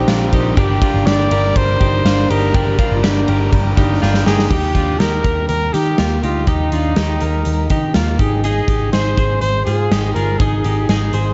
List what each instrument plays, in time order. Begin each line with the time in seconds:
Already playing: transistor combo organ C4 D4 A#4, trumpet G4
0.08 picked electric bass A#1, overdriven electric guitar A#2 D3 F3 C4 D4 A#4, clean electric guitar D4 F4, snare, ride
0.32 picked electric bass A#1, overdriven electric guitar F3 C4 D4 A#4, clean electric guitar D#4 G4, kick, ride
0.56 picked electric bass G1, overdriven electric guitar G2 D3 G3 A#3 D4 G4, transistor combo organ D4 G4 A#4, clean electric guitar D4 G4, trumpet G4, kick, ride
0.82 overdriven electric guitar G3 A#3 D4 G4, clean electric guitar D4 F4, kick, ride
0.94 picked electric bass G1
1.06 picked electric bass G1, overdriven electric guitar G2 D3 G3 A#3 D4 G4, clean electric guitar D4 G4, trumpet D5, snare, ride
1.30 picked electric bass G1, overdriven electric guitar G3 A#3 D4 G4, clean electric guitar G4 A#4, ride
1.56 picked electric bass G1, overdriven electric guitar G3 A#3 D4 G4, trumpet C5, kick, ride
1.80 picked electric bass G1, overdriven electric guitar G3 A#3 D4 G4, clean electric guitar D#4 G4, kick, ride
2.04 picked electric bass G1, overdriven electric guitar G2 D3 G3 A#3 D4 G4, clean electric guitar D4 F4, snare, ride
2.29 picked electric bass G1, overdriven electric guitar G3 A#3 D4 G4, clean electric guitar D#4 G4, trumpet A#4, ride
2.54 picked electric bass G1, overdriven electric guitar G2 D3 G3 A#3 D4 G4, clean electric guitar D4 G4, kick, ride
2.79 overdriven electric guitar G3 A#3 D4 G4, clean electric guitar D4 F4, kick, ride
2.92 picked electric bass G1
3.03 picked electric bass G1, overdriven electric guitar G2 D3 G3 A#3 D4 G4, clean electric guitar D4 G4, snare, ride
3.28 picked electric bass G1, overdriven electric guitar G3 A#3 D4 G4, clean electric guitar G4 A#4, ride
3.52 picked electric bass G1, overdriven electric guitar G3 A#3 D4 G4, kick, ride
3.77 picked electric bass G1, overdriven electric guitar G3 A#3 D4 G4, clean electric guitar D#4 G4, transistor combo organ F5, kick, snare, ride
4.02 picked electric bass G1, overdriven electric guitar G2 D3 G3 A#3 D4 G4, clean electric guitar D4 F4, transistor combo organ G5, snare
4.14 snare
4.26 picked electric bass G1, overdriven electric guitar G3 A#3 D4 G4, clean electric guitar D#4 G4, trumpet G#4, transistor combo organ A#5, snare
4.39 snare
4.51 picked electric bass D#2, clean electric guitar D#4 G4, trumpet G4, kick, crash
4.75 picked electric bass D#2, clean electric guitar D4 F4, kick, closed hi-hat
4.99 picked electric bass D#2, clean electric guitar D#4 G4, trumpet A#4, snare, closed hi-hat
5.24 picked electric bass D#2, clean electric guitar G4 A#4, kick, closed hi-hat
5.49 picked electric bass D#2, trumpet A#4, closed hi-hat
5.74 picked electric bass D#3, clean electric guitar D#4 G4, trumpet G4, snare, closed hi-hat
5.98 picked electric bass D#2, clean electric guitar A#3 F4, snare, closed hi-hat
6.23 picked electric bass D2, clean electric guitar D#4 G4, trumpet F4, closed hi-hat
6.47 picked electric bass D#2, trumpet D#4, clean electric guitar D#4 G4, kick, closed hi-hat
6.72 picked electric bass D#2, clean electric guitar D4 F4, closed hi-hat
6.96 picked electric bass D#2, clean electric guitar D#4 G4, snare, closed hi-hat
7.20 picked electric bass D#2, clean electric guitar G4 A#4, closed hi-hat
7.45 picked electric bass D#2, closed hi-hat
7.70 picked electric bass D#3, clean electric guitar D#4 G4, kick, closed hi-hat
7.94 picked electric bass D#2, clean electric guitar A#3 F4, snare, closed hi-hat
8.19 picked electric bass G#1, clean electric guitar D#4 G4, trumpet G#4, kick, closed hi-hat
8.43 clean electric guitar D#4 G#4, trumpet G#4, closed hi-hat
8.68 picked electric bass G#1, clean electric guitar D#4 G4, kick, closed hi-hat
8.93 picked electric bass G#1, clean electric guitar D#4 G#4, trumpet C5, snare, closed hi-hat
9.17 picked electric bass G#1, clean electric guitar G#4 C5, kick, closed hi-hat
9.41 picked electric bass G#1, trumpet C5, closed hi-hat
9.65 picked electric bass G#2, clean electric guitar F4 G#4, trumpet G#4, closed hi-hat
9.91 picked electric bass G#1, clean electric guitar D#4 G4, snare, closed hi-hat
10.14 picked electric bass G1, clean electric guitar F4 G#4, trumpet A#4, closed hi-hat
10.39 picked electric bass G#1, clean electric guitar D#4 G#4, trumpet G#4, kick, closed hi-hat
10.64 picked electric bass G#1, clean electric guitar D#4 G4, closed hi-hat
10.89 picked electric bass G#1, clean electric guitar D#4 G#4, snare, closed hi-hat
11.13 picked electric bass G#1, clean electric guitar G#4 C5, closed hi-hat